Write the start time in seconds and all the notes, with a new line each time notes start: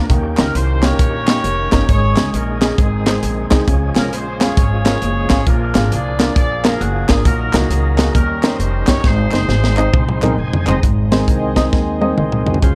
0.09 D#2 D#3 A#3 C#4 F#4, kick, closed hi-hat
0.15 G4
0.37 C#2 A#3 C#4 D#4 G4 A#4, snare, clap, closed hi-hat
0.55 C2 C5, closed hi-hat
0.82 A#3 C#4 D#4 G4 A#4 C#5, snare, clap, closed hi-hat
0.99 A#1, kick, closed hi-hat
1.27 A#3 C#4 D#4 G4, snare, clap, closed hi-hat
1.44 F1, closed hi-hat
1.72 G1 A#3 C#4 D#4 A#4, kick, snare, clap, closed hi-hat
1.89 G#1 G#2 D#3 G#3 C#4 G#4 C#5, kick, closed hi-hat
2.16 C#2 G#3 C#4 D#4 G#4, snare, clap, closed hi-hat
2.33 A#1 C#4 D#4 A#4, closed hi-hat
2.61 G#3 C#4 D#4 G#4, snare, clap, closed hi-hat
2.78 G#1 G#2 D#3 G#3 C4 D#4 G#4, kick, closed hi-hat
3.06 G#3 C4 D#4 G#4, snare, clap, closed hi-hat
3.23 A#1, closed hi-hat
3.51 C2 G#3 C4 D#4 G#4, kick, snare, clap, closed hi-hat
3.68 C#2 C#3 F3 G#3 C#4 G#4, kick, closed hi-hat
3.96 C2 G#3 C#4 F4 G#4 A#4, snare, clap, closed hi-hat
4.12 A#1 C5, closed hi-hat
4.41 G#3 C#4 F4 G#4 C#5, snare, clap, closed hi-hat
4.57 G#1, kick, closed hi-hat
4.85 G#3 C#4 F4 A#4, snare, clap, closed hi-hat
5.02 F#1, closed hi-hat
5.30 G#1 G#3 C#4 F4 G#4, kick, snare, clap, closed hi-hat
5.47 A#1 A#2 F3 A#3 D4 F4 G#4 A#4, kick, closed hi-hat
5.75 G#1 A#3 D4 F4 G#4, snare, clap, closed hi-hat
5.92 C2 F4 G#4 D5, closed hi-hat
6.20 A#3 D4 F4 A#4, snare, clap, closed hi-hat
6.36 A#1 F4 G#4 D5, kick, closed hi-hat
6.64 A#3 D4 F4 A#4, snare, clap, closed hi-hat
6.80 F#1 F#4, closed hi-hat
7.09 G#1 A#3 D4 F4 G#4 A#4, kick, snare, clap, closed hi-hat
7.25 A#1 A#2 F#3 A#3 D#4 F#4 A#4, kick, closed hi-hat
7.53 C2 A#3 D#4 F#4 G#4 A#4, snare, clap, closed hi-hat
7.70 C#2, closed hi-hat
7.98 A#3 D#4 F#4 G#4, snare, clap, closed hi-hat
8.14 D#2 D#3 G3 C#4 D#4 G4 A#4, kick, closed hi-hat
8.43 C#4 D#4 G4 A#4 C5, snare, clap, closed hi-hat
8.59 F1, closed hi-hat
8.87 G1 C#4 D#4 G4 C#5, kick, snare, clap, closed hi-hat
9.04 G#1 G#2 G#3 C4 D#4 G#4 C5, kick, snare
9.32 F#1 C4 D#4 G#4 C5, snare, clap
9.49 G#1, snare
9.64 snare
9.77 C4 D#4 G#4 D#5, clap
9.94 C2, kick, mid tom
10.09 mid tom
10.22 C4 D#4 G#4 A#4, clap, mid tom
10.38 F1 G#5
10.53 floor tom
10.67 F#1 C4 D#4 G#4 C5 D#5, clap, floor tom
10.83 G#1 G#2 D#4 G#4 C5 D#5, kick, closed hi-hat
11.12 D#3 G#3 C4 D#4 G#4 C5, snare, closed hi-hat
11.28 C2, kick, closed hi-hat
11.56 C4 D#4 G#4 D#5, kick, snare, closed hi-hat
11.73 D#2, kick, snare
12.01 C4 D#4 G#4 D#5, high tom
12.18 C2 D#5 C6, mid tom
12.32 mid tom
12.46 F#4 D#5, floor tom
12.54 floor tom
12.62 C#2 C#3 G#3 C#4 F4 C5, kick, closed hi-hat